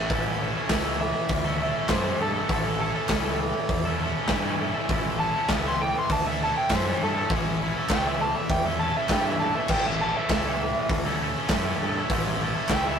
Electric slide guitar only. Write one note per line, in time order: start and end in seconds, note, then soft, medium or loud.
1.01 1.88 E5 loud
1.90 2.19 C5 medium
2.22 2.50 A4 medium
2.53 2.80 A4 medium
2.81 4.57 A4 medium
5.20 5.49 A5 loud
5.68 5.81 C6 loud
5.81 5.95 G5 medium
5.99 6.12 C6 medium
6.12 6.26 A5 loud
6.27 6.41 E5 medium
6.43 6.57 A5 loud
6.57 6.71 G5 loud
6.75 7.02 C5 loud
7.04 7.31 A4 loud
7.92 8.06 G5 loud
8.07 8.21 E5 medium
8.21 8.35 A5 medium
8.36 8.50 E5 loud
8.50 8.65 G5 loud
8.65 8.80 E5 medium
8.79 8.94 A5 medium
8.97 9.11 E5 medium
9.11 9.25 G5 loud
9.25 9.40 E5 medium
9.40 9.55 A5 medium
9.55 9.70 E5 medium
9.70 9.85 G5 loud
9.86 10.00 E5 medium
10.01 10.15 A5 loud
10.17 10.30 E5 loud
10.31 10.89 E5 medium
12.71 12.85 G5 loud
12.86 12.99 E5 loud